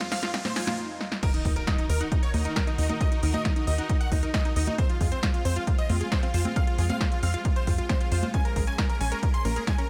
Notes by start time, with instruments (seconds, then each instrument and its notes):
Already playing: string section F2 F3 G#3 C4, riser
0.01 synth arpeggio sound C4, grand piano F4, supersaw synth F4, snare, closed hi-hat
0.12 supersaw synth F5, grand piano F5, snare, open hi-hat
0.23 supersaw synth F4, grand piano F4, synth arpeggio sound F5, snare, closed hi-hat
0.34 synth arpeggio sound C4, supersaw synth F4, grand piano F4, kick, snare, closed hi-hat, swell
0.45 supersaw synth C5, grand piano C5, snare, closed hi-hat, high conga
0.56 supersaw synth F4, grand piano F4, synth arpeggio sound G#5, snare, open hi-hat
0.67 grand piano F4, supersaw synth F4, snare, closed hi-hat, high conga
1.01 snare
1.12 snare
1.23 string section D#3 D#4 F#4 A#4, synth arpeggio sound D#4, grand piano A#4, supersaw synth A#4, kick, closed hi-hat, crash, impact
1.34 grand piano D#4, supersaw synth D#4, closed hi-hat
1.45 analog synth bass D#2, grand piano D#4, supersaw synth D#4, synth arpeggio sound A#4, kick, open hi-hat
1.56 synth arpeggio sound D#4, supersaw synth A#4, grand piano A#4, closed hi-hat
1.67 supersaw synth D#4, grand piano D#4, synth arpeggio sound D#5, kick, snare, closed hi-hat
1.78 supersaw synth D#4, grand piano D#4, closed hi-hat
1.89 analog synth bass D#2, synth arpeggio sound D#4, supersaw synth A#4, grand piano A#4, open hi-hat
2.01 supersaw synth D#4, grand piano D#4, synth arpeggio sound F#5, closed hi-hat
2.12 supersaw synth D#4, grand piano D#4, kick, closed hi-hat
2.23 grand piano C#5, supersaw synth C#5, closed hi-hat
2.34 analog synth bass D#2, supersaw synth D#4, synth arpeggio sound D#4, grand piano D#4, open hi-hat, high conga
2.45 supersaw synth D#4, grand piano D#4, synth arpeggio sound A#4, closed hi-hat
2.56 supersaw synth A#4, grand piano A#4, kick, snare, closed hi-hat
2.67 supersaw synth D#4, synth arpeggio sound D#4, grand piano D#4, closed hi-hat
2.78 analog synth bass D#2, supersaw synth D#4, grand piano D#4, synth arpeggio sound D#5, open hi-hat
2.89 supersaw synth D#4, synth arpeggio sound D#4, grand piano D#4, closed hi-hat, high conga
3.01 synth arpeggio sound D#4, grand piano D#5, supersaw synth D#5, kick, closed hi-hat
3.12 supersaw synth D#4, grand piano D#4, closed hi-hat
3.23 analog synth bass D#2, supersaw synth D#4, grand piano D#4, synth arpeggio sound A#4, open hi-hat
3.34 synth arpeggio sound D#4, supersaw synth D#5, grand piano D#5, closed hi-hat, high conga
3.45 supersaw synth D#4, grand piano D#4, synth arpeggio sound D#5, kick, snare, closed hi-hat
3.56 supersaw synth D#4, grand piano D#4, closed hi-hat
3.67 analog synth bass D#2, synth arpeggio sound D#4, supersaw synth D#5, grand piano D#5, open hi-hat
3.78 supersaw synth D#4, grand piano D#4, synth arpeggio sound F#5, closed hi-hat
3.89 supersaw synth D#4, grand piano D#4, kick, closed hi-hat
4.01 supersaw synth F#5, grand piano F#5, closed hi-hat
4.12 analog synth bass D#2, supersaw synth D#4, grand piano D#4, synth arpeggio sound D#4, kick, open hi-hat
4.23 supersaw synth D#4, grand piano D#4, synth arpeggio sound A#4, closed hi-hat
4.34 supersaw synth D#5, grand piano D#5, kick, snare, closed hi-hat
4.45 grand piano D#4, supersaw synth D#4, synth arpeggio sound D#4, closed hi-hat
4.56 analog synth bass D#2, supersaw synth D#4, grand piano D#4, synth arpeggio sound D#5, open hi-hat
4.67 grand piano D#4, supersaw synth D#4, synth arpeggio sound D#4, closed hi-hat, high conga
4.78 string section G#3 C4 F4, synth arpeggio sound C4, grand piano C5, supersaw synth C5, kick, closed hi-hat
4.89 grand piano F4, supersaw synth F4, closed hi-hat
5.01 analog synth bass F2, grand piano F4, supersaw synth F4, synth arpeggio sound G#4, kick, open hi-hat
5.12 synth arpeggio sound C4, grand piano C5, supersaw synth C5, closed hi-hat
5.23 grand piano F4, supersaw synth F4, synth arpeggio sound C5, kick, snare, closed hi-hat
5.34 grand piano F4, supersaw synth F4, closed hi-hat
5.45 analog synth bass F2, synth arpeggio sound C4, grand piano C5, supersaw synth C5, open hi-hat
5.56 grand piano F4, supersaw synth F4, synth arpeggio sound F5, closed hi-hat
5.67 supersaw synth F4, kick, closed hi-hat
5.78 grand piano D#5, supersaw synth D#5, closed hi-hat
5.90 analog synth bass F2, synth arpeggio sound C4, supersaw synth F4, grand piano F4, open hi-hat, high conga
6.01 grand piano F4, supersaw synth F4, synth arpeggio sound G#4, closed hi-hat
6.12 supersaw synth C5, grand piano C5, kick, snare, closed hi-hat
6.23 synth arpeggio sound C4, supersaw synth F4, grand piano F4, closed hi-hat
6.34 analog synth bass F2, supersaw synth F4, grand piano F4, synth arpeggio sound C5, open hi-hat
6.45 synth arpeggio sound C4, supersaw synth F4, grand piano F4, closed hi-hat, high conga
6.56 synth arpeggio sound C4, supersaw synth F5, grand piano F5, kick, closed hi-hat
6.67 supersaw synth F4, grand piano F4, closed hi-hat
6.78 analog synth bass F2, supersaw synth F4, grand piano F4, synth arpeggio sound G#4, open hi-hat
6.90 synth arpeggio sound C4, supersaw synth F5, grand piano F5, closed hi-hat, high conga
7.01 supersaw synth F4, grand piano F4, synth arpeggio sound C5, kick, snare, closed hi-hat
7.12 supersaw synth F4, grand piano F4, closed hi-hat
7.23 analog synth bass F2, synth arpeggio sound C4, supersaw synth F5, grand piano F5, open hi-hat
7.34 supersaw synth F4, grand piano F4, synth arpeggio sound F5, closed hi-hat
7.45 supersaw synth F4, grand piano F4, kick, closed hi-hat
7.56 supersaw synth C5, grand piano C5, closed hi-hat
7.67 analog synth bass F2, supersaw synth F4, grand piano F4, synth arpeggio sound C5, kick, open hi-hat
7.78 supersaw synth F4, synth arpeggio sound F4, grand piano F4, closed hi-hat
7.89 synth arpeggio sound C4, supersaw synth C5, grand piano C5, kick, snare, closed hi-hat
8.01 supersaw synth F4, synth arpeggio sound F4, grand piano F4, closed hi-hat
8.12 analog synth bass F2, supersaw synth F4, grand piano F4, synth arpeggio sound C5, open hi-hat
8.23 supersaw synth F4, grand piano F4, synth arpeggio sound C5, closed hi-hat, high conga
8.34 string section A#3 C#4, synth arpeggio sound C#4, supersaw synth G#5, grand piano G#5, kick, closed hi-hat
8.45 supersaw synth A#4, grand piano A#4, closed hi-hat
8.56 analog synth bass A#1, synth arpeggio sound G#4, supersaw synth A#4, grand piano A#4, kick, open hi-hat
8.67 synth arpeggio sound C#4, supersaw synth G#5, grand piano G#5, closed hi-hat
8.78 supersaw synth A#4, synth arpeggio sound A#4, grand piano A#4, kick, snare, closed hi-hat
8.89 supersaw synth A#4, grand piano A#4, closed hi-hat
9.00 analog synth bass A#1, synth arpeggio sound C#4, supersaw synth G#5, grand piano G#5, open hi-hat
9.12 supersaw synth A#4, grand piano A#4, synth arpeggio sound C#5, closed hi-hat
9.23 supersaw synth A#4, grand piano A#4, kick, closed hi-hat
9.34 supersaw synth C6, grand piano C6, closed hi-hat
9.45 analog synth bass A#1, synth arpeggio sound C#4, supersaw synth A#4, grand piano A#4, open hi-hat, high conga
9.56 synth arpeggio sound G#4, supersaw synth A#4, grand piano A#4, closed hi-hat
9.67 supersaw synth G#5, grand piano G#5, kick, snare, closed hi-hat
9.78 synth arpeggio sound C#4, supersaw synth A#4, grand piano A#4, closed hi-hat